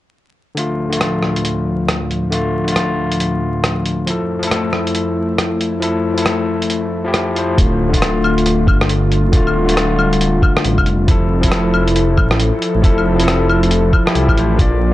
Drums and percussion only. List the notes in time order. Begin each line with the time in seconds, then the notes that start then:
0.57 closed hi-hat
0.93 closed hi-hat
1.01 cross-stick, closed hi-hat
1.23 cross-stick
1.36 closed hi-hat
1.45 closed hi-hat
1.88 cross-stick, closed hi-hat
2.11 closed hi-hat
2.32 closed hi-hat
2.68 closed hi-hat
2.76 cross-stick, closed hi-hat
3.12 closed hi-hat
3.20 closed hi-hat
3.64 cross-stick, closed hi-hat
3.85 closed hi-hat
4.07 closed hi-hat
4.43 closed hi-hat
4.51 cross-stick, closed hi-hat
4.73 cross-stick
4.87 closed hi-hat
4.95 closed hi-hat
5.38 cross-stick, closed hi-hat
5.61 closed hi-hat
5.82 closed hi-hat
6.18 closed hi-hat
6.26 cross-stick, closed hi-hat
6.62 closed hi-hat
6.70 closed hi-hat
7.14 cross-stick, closed hi-hat
7.36 closed hi-hat
7.58 kick, closed hi-hat
7.93 kick, closed hi-hat
8.02 cross-stick, closed hi-hat
8.24 claves
8.38 closed hi-hat
8.46 closed hi-hat
8.67 kick, claves
8.81 cross-stick
8.89 closed hi-hat
9.12 closed hi-hat
9.33 kick, closed hi-hat
9.47 claves
9.69 closed hi-hat
9.77 cross-stick, closed hi-hat
9.99 claves
10.13 closed hi-hat
10.21 closed hi-hat
10.42 kick, claves
10.57 cross-stick
10.65 closed hi-hat
10.78 kick, claves
10.86 closed hi-hat
11.08 kick, closed hi-hat
11.43 kick, closed hi-hat
11.52 cross-stick, closed hi-hat
11.74 claves
11.88 closed hi-hat
11.96 closed hi-hat
12.17 kick, claves
12.31 cross-stick
12.40 closed hi-hat
12.62 closed hi-hat
12.83 kick, closed hi-hat
12.98 claves
13.20 closed hi-hat
13.28 cross-stick, closed hi-hat
13.49 claves
13.63 closed hi-hat
13.71 closed hi-hat
13.93 kick, claves
14.07 cross-stick
14.15 closed hi-hat
14.29 kick, claves
14.37 closed hi-hat
14.59 kick, closed hi-hat